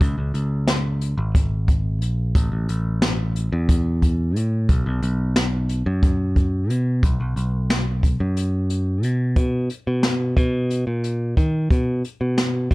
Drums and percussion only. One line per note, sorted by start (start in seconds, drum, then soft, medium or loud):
0.01 kick loud
0.01 closed hi-hat medium
0.34 closed hi-hat medium
0.67 snare loud
0.67 closed hi-hat medium
1.01 closed hi-hat medium
1.35 kick medium
1.35 closed hi-hat medium
1.68 kick medium
1.68 closed hi-hat medium
2.02 closed hi-hat medium
2.35 kick medium
2.35 closed hi-hat medium
2.69 closed hi-hat medium
3.02 snare loud
3.02 closed hi-hat medium
3.36 closed hi-hat medium
3.69 kick loud
3.69 closed hi-hat medium
4.02 kick medium
4.02 closed hi-hat medium
4.36 closed hi-hat medium
4.69 kick medium
4.69 closed hi-hat medium
5.02 closed hi-hat medium
5.36 snare medium
5.36 closed hi-hat medium
5.69 closed hi-hat medium
6.03 kick loud
6.03 closed hi-hat medium
6.36 kick medium
6.36 closed hi-hat medium
6.70 closed hi-hat medium
7.03 kick loud
7.03 closed hi-hat medium
7.37 closed hi-hat medium
7.70 snare loud
7.70 closed hi-hat medium
8.03 kick medium
8.03 closed hi-hat medium
8.37 closed hi-hat medium
8.70 closed hi-hat medium
9.03 closed hi-hat medium
9.36 kick medium
9.36 closed hi-hat medium
9.70 closed hi-hat medium
10.03 snare loud
10.03 closed hi-hat medium
10.37 kick medium
10.37 closed hi-hat medium
10.70 closed hi-hat medium
11.04 closed hi-hat medium
11.37 kick medium
11.37 closed hi-hat medium
11.71 kick medium
11.71 closed hi-hat medium
12.04 closed hi-hat medium
12.38 snare medium
12.38 closed hi-hat medium
12.71 kick medium